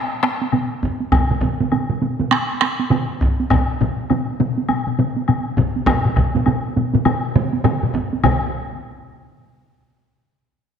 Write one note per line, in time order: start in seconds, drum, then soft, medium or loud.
0.23 taiko rim medium
0.23 taiko high medium
0.42 taiko high soft
0.52 taiko low-mid medium
0.52 taiko high medium
0.52 high woodblock soft
0.83 taiko medium
0.83 taiko high soft
1.00 taiko high soft
1.12 taiko medium
1.12 taiko mid medium
1.12 taiko high medium
1.12 high woodblock medium
1.31 taiko mid medium
1.41 taiko medium
1.41 taiko mid medium
1.41 taiko high medium
1.60 taiko mid medium
1.60 taiko high medium
1.72 taiko mid medium
1.72 taiko high medium
1.72 high woodblock soft
1.89 taiko mid medium
2.02 taiko mid medium
2.02 taiko high medium
2.19 taiko mid medium
2.19 taiko high soft
2.31 taiko rim medium
2.31 taiko high medium
2.31 high woodblock soft
2.61 taiko rim medium
2.61 taiko high medium
2.79 taiko high medium
2.90 taiko mid loud
2.90 taiko high medium
2.90 high woodblock soft
3.21 taiko medium
3.21 taiko high soft
3.40 taiko high medium
3.50 taiko loud
3.50 taiko low-mid medium
3.50 taiko high medium
3.50 high woodblock soft
3.81 taiko medium
3.81 taiko low-mid medium
3.81 taiko high soft
4.10 taiko low-mid loud
4.10 taiko high medium
4.10 high woodblock soft
4.40 taiko low-mid loud
4.40 taiko high medium
4.58 taiko high medium
4.69 taiko low-mid medium
4.69 taiko high medium
4.69 high woodblock soft
4.87 taiko low-mid medium
4.99 taiko low-mid medium
4.99 taiko high medium
5.16 taiko high soft
5.28 taiko low-mid medium
5.28 taiko high medium
5.28 high woodblock soft
5.57 taiko medium
5.57 taiko low-mid loud
5.57 taiko high soft
5.76 taiko high soft
5.86 taiko loud
5.86 taiko low-mid medium
5.86 taiko mid medium
5.86 taiko high medium
5.86 high woodblock medium
6.05 taiko low-mid medium
6.05 taiko mid medium
6.16 taiko medium
6.16 taiko low-mid medium
6.16 taiko mid medium
6.16 high woodblock soft
6.35 taiko low-mid medium
6.35 taiko mid medium
6.35 taiko high medium
6.46 taiko low-mid medium
6.46 taiko mid medium
6.46 taiko high medium
6.46 high woodblock soft
6.76 taiko low-mid medium
6.76 taiko mid medium
6.76 taiko high medium
6.94 taiko low-mid medium
6.94 taiko mid medium
6.94 taiko high medium
7.05 taiko low-mid loud
7.05 taiko mid loud
7.05 taiko high medium
7.05 high woodblock soft
7.35 taiko low-mid medium
7.35 taiko mid loud
7.35 taiko high medium
7.53 taiko high medium
7.64 taiko low-mid loud
7.64 taiko mid loud
7.64 taiko high medium
7.64 high woodblock soft
7.83 taiko low-mid medium
7.83 taiko mid medium
7.94 taiko medium
7.94 taiko high medium
8.13 taiko high medium
8.24 taiko medium
8.24 taiko low-mid loud
8.24 taiko mid loud
8.24 taiko high medium
8.24 high woodblock medium